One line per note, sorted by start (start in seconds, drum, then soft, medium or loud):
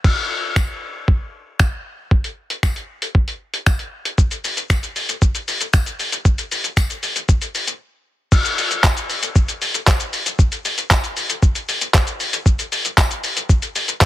0.04 kick loud
0.04 crash medium
0.56 finger snap loud
0.56 kick loud
0.56 tambourine medium
1.08 kick loud
1.59 finger snap loud
1.59 kick loud
1.59 tambourine medium
2.11 kick loud
2.24 closed hi-hat medium
2.50 closed hi-hat medium
2.63 finger snap loud
2.63 kick loud
2.63 tambourine medium
2.76 closed hi-hat medium
3.02 closed hi-hat medium
3.15 kick loud
3.28 closed hi-hat medium
3.54 closed hi-hat medium
3.66 finger snap loud
3.66 kick loud
3.66 tambourine medium
3.79 closed hi-hat medium
4.05 closed hi-hat medium
4.18 kick loud
4.18 shaker medium
4.31 closed hi-hat medium
4.31 shaker medium
4.44 open hi-hat medium
4.44 shaker medium
4.57 closed hi-hat medium
4.57 shaker medium
4.70 finger snap loud
4.70 kick loud
4.70 tambourine medium
4.70 shaker medium
4.83 closed hi-hat medium
4.83 shaker medium
4.96 open hi-hat medium
4.96 shaker soft
5.09 closed hi-hat medium
5.09 shaker medium
5.22 kick loud
5.22 shaker medium
5.35 closed hi-hat medium
5.35 shaker medium
5.48 open hi-hat medium
5.48 shaker medium
5.61 closed hi-hat medium
5.61 shaker medium
5.73 finger snap loud
5.73 kick loud
5.73 tambourine medium
5.73 shaker medium
5.86 closed hi-hat medium
5.86 shaker medium
5.99 open hi-hat medium
5.99 shaker soft
6.12 closed hi-hat medium
6.12 shaker medium
6.25 kick loud
6.25 shaker medium
6.38 closed hi-hat medium
6.38 shaker medium
6.51 open hi-hat medium
6.51 shaker medium
6.64 closed hi-hat medium
6.64 shaker medium
6.77 finger snap loud
6.77 kick loud
6.77 tambourine medium
6.77 shaker medium
6.90 closed hi-hat medium
6.90 shaker medium
7.03 open hi-hat medium
7.03 shaker soft
7.16 closed hi-hat medium
7.16 shaker medium
7.29 kick loud
7.29 shaker medium
7.41 closed hi-hat medium
7.41 shaker medium
7.55 open hi-hat medium
7.55 shaker medium
7.67 closed hi-hat medium
7.67 shaker medium
8.32 kick loud
8.32 crash loud
8.32 shaker medium
8.45 closed hi-hat medium
8.45 shaker medium
8.58 open hi-hat medium
8.58 shaker medium
8.71 closed hi-hat medium
8.71 shaker medium
8.84 kick loud
8.84 clap loud
8.84 tambourine medium
8.84 shaker medium
8.97 closed hi-hat medium
8.97 shaker medium
9.10 open hi-hat medium
9.10 shaker soft
9.23 closed hi-hat medium
9.23 shaker medium
9.35 kick loud
9.35 shaker medium
9.48 closed hi-hat medium
9.48 shaker medium
9.62 open hi-hat medium
9.62 shaker medium
9.74 closed hi-hat medium
9.74 shaker medium
9.87 kick loud
9.87 clap loud
9.87 tambourine medium
9.87 shaker medium
10.00 closed hi-hat medium
10.00 shaker medium
10.13 open hi-hat medium
10.13 shaker soft
10.26 closed hi-hat medium
10.26 shaker medium
10.39 kick loud
10.39 shaker medium
10.52 closed hi-hat medium
10.52 shaker medium
10.65 open hi-hat medium
10.65 shaker medium
10.78 closed hi-hat medium
10.78 shaker medium
10.91 kick loud
10.91 clap loud
10.91 tambourine medium
10.91 shaker medium
11.04 closed hi-hat medium
11.04 shaker medium
11.17 open hi-hat medium
11.17 shaker soft
11.30 closed hi-hat medium
11.30 shaker medium
11.42 kick loud
11.42 shaker medium
11.55 closed hi-hat medium
11.55 shaker medium
11.69 open hi-hat medium
11.69 shaker medium
11.81 closed hi-hat medium
11.81 shaker medium
11.94 kick loud
11.94 clap loud
11.94 tambourine medium
11.94 shaker medium
12.07 closed hi-hat medium
12.07 shaker medium
12.20 open hi-hat medium
12.20 shaker soft
12.33 closed hi-hat medium
12.33 shaker medium
12.46 kick loud
12.46 shaker medium
12.59 closed hi-hat medium
12.59 shaker medium
12.72 open hi-hat medium
12.72 shaker medium
12.85 closed hi-hat medium
12.85 shaker medium
12.98 kick loud
12.98 clap loud
12.98 tambourine medium
12.98 shaker medium
13.11 closed hi-hat medium
13.11 shaker medium
13.24 open hi-hat medium
13.24 shaker medium
13.37 closed hi-hat medium
13.37 shaker medium
13.49 kick loud
13.49 shaker medium
13.62 closed hi-hat medium
13.62 shaker medium
13.75 open hi-hat medium
13.75 shaker medium
13.88 closed hi-hat medium
13.88 shaker medium
14.01 kick loud
14.01 clap loud
14.01 tambourine medium
14.01 shaker medium